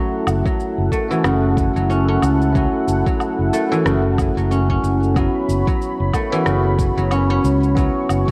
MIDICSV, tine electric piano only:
0, 0, Header, 1, 2, 480
1, 0, Start_track
1, 0, Key_signature, 3, "minor"
1, 0, Tempo, 652174
1, 1878, Time_signature, 4, 2, 24, 8
1, 6118, End_track
2, 0, Start_track
2, 0, Title_t, "Tine electric piano"
2, 0, Program_c, 0, 4
2, 0, Note_on_c, 0, 57, 89
2, 0, Note_on_c, 0, 61, 75
2, 0, Note_on_c, 0, 64, 80
2, 0, Note_on_c, 0, 66, 99
2, 116, Control_c, 0, 64, 127
2, 774, Note_off_c, 0, 57, 0
2, 779, Note_off_c, 0, 61, 0
2, 784, Note_off_c, 0, 64, 0
2, 789, Note_off_c, 0, 66, 0
2, 800, Note_on_c, 0, 57, 94
2, 809, Note_on_c, 0, 61, 77
2, 820, Note_on_c, 0, 64, 83
2, 830, Note_on_c, 0, 66, 103
2, 1845, Note_off_c, 0, 57, 0
2, 1850, Note_off_c, 0, 61, 0
2, 1855, Note_off_c, 0, 64, 0
2, 1860, Note_off_c, 0, 66, 0
2, 1861, Note_on_c, 0, 57, 87
2, 1872, Note_on_c, 0, 61, 81
2, 1882, Note_on_c, 0, 64, 77
2, 1891, Note_on_c, 0, 66, 96
2, 2694, Note_off_c, 0, 57, 0
2, 2700, Note_off_c, 0, 61, 0
2, 2705, Note_off_c, 0, 64, 0
2, 2710, Note_off_c, 0, 66, 0
2, 2719, Note_on_c, 0, 57, 89
2, 2729, Note_on_c, 0, 61, 82
2, 2739, Note_on_c, 0, 64, 82
2, 2749, Note_on_c, 0, 66, 97
2, 3765, Note_off_c, 0, 57, 0
2, 3770, Note_off_c, 0, 61, 0
2, 3775, Note_off_c, 0, 64, 0
2, 3780, Note_off_c, 0, 66, 0
2, 3786, Note_on_c, 0, 59, 87
2, 3794, Note_on_c, 0, 61, 78
2, 3804, Note_on_c, 0, 64, 81
2, 3808, Control_c, 0, 64, 0
2, 3814, Note_on_c, 0, 66, 101
2, 3946, Control_c, 0, 64, 127
2, 4617, Note_off_c, 0, 59, 0
2, 4621, Note_off_c, 0, 61, 0
2, 4626, Note_off_c, 0, 64, 0
2, 4631, Note_off_c, 0, 66, 0
2, 4641, Note_on_c, 0, 59, 91
2, 4651, Note_on_c, 0, 61, 82
2, 4661, Note_on_c, 0, 64, 86
2, 4671, Note_on_c, 0, 66, 105
2, 5686, Note_off_c, 0, 59, 0
2, 5691, Note_off_c, 0, 61, 0
2, 5696, Note_off_c, 0, 64, 0
2, 5701, Note_off_c, 0, 66, 0
2, 5704, Note_on_c, 0, 59, 91
2, 5713, Note_on_c, 0, 61, 81
2, 5724, Note_on_c, 0, 64, 80
2, 5733, Note_on_c, 0, 66, 90
2, 6118, Note_off_c, 0, 59, 0
2, 6118, Note_off_c, 0, 61, 0
2, 6118, Note_off_c, 0, 64, 0
2, 6118, Note_off_c, 0, 66, 0
2, 6118, End_track
0, 0, End_of_file